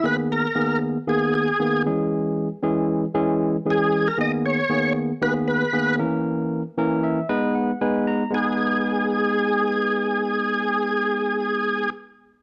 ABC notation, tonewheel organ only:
X:1
M:4/4
L:1/16
Q:1/4=116
K:G#m
V:1 name="Tonewheel organ"
B2 A4 z2 G2 G4 z2 | z12 G3 A | d2 c4 z2 B2 B4 z2 | z16 |
G16- | G16 |]